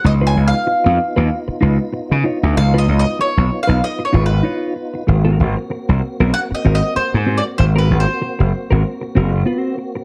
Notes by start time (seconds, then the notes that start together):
0.04 C#2 B3 D#4 F4 D#5, muted clean electric guitar stroke
0.21 D#4 F4 B4
0.27 G#5
0.36 C#2, muted clean electric guitar stroke
0.48 F5
0.54 muted clean electric guitar stroke
0.67 muted clean electric guitar stroke
0.84 F2, muted clean electric guitar stroke
1.16 D#2 D#4 F4 B4
1.30 muted clean electric guitar stroke
1.48 muted clean electric guitar stroke, muted slap bass stroke
1.61 C#2 D#4 F4 B4
1.79 muted clean electric guitar stroke
1.93 muted clean electric guitar stroke
2.11 C#3
2.24 D#4 F4 C#5
2.42 D2, muted clean electric guitar stroke
2.57 C#2 F5, muted clean electric guitar stroke
2.74 D#4 F4 B4
2.78 D#5
2.88 C#2
2.99 D#5
3.05 muted clean electric guitar stroke
3.19 C#5, muted clean electric guitar stroke
3.37 B1, muted clean electric guitar stroke
3.63 F5
3.67 B1 D#4 F4 B4
3.82 D#5, muted clean electric guitar stroke
3.99 muted clean electric guitar stroke
4.05 C#5
4.13 G#1 D#4 F4 B4
4.26 B4
4.30 muted clean electric guitar stroke
4.43 D#4 F4 C#5
4.76 muted clean electric guitar stroke
4.94 muted clean electric guitar stroke
5.07 G#1 A#3 C4 F#4, muted clean electric guitar stroke
5.25 C4 F#4 A#4
5.40 G#1, muted clean electric guitar stroke
5.57 muted clean electric guitar stroke
5.70 muted clean electric guitar stroke
5.89 C2, muted clean electric guitar stroke
6.20 B1 C4 F#4 A#4
6.34 F#5, muted clean electric guitar stroke
6.51 D#5, muted clean electric guitar stroke, muted slap bass stroke
6.65 G#1 C4 F#4 A#4
6.75 D#5
6.82 muted clean electric guitar stroke
6.96 C5, muted clean electric guitar stroke, muted slap bass stroke
7.14 G#2
7.27 C4 F#4 C5
7.38 D5
7.44 muted clean electric guitar stroke
7.58 G#1 C5, muted clean electric guitar stroke
7.76 C4 F#4 A#4 B4
7.90 G#1, muted clean electric guitar stroke
8.00 C5
8.07 muted clean electric guitar stroke
8.22 muted clean electric guitar stroke
8.39 F#1, muted clean electric guitar stroke
8.71 G#1 C4 F#4 A#4
9.01 muted clean electric guitar stroke
9.15 F#1 C4 F#4 A#4
9.46 B3 F4 B4
9.58 C4 F#4 C5
9.77 muted clean electric guitar stroke
9.95 muted clean electric guitar stroke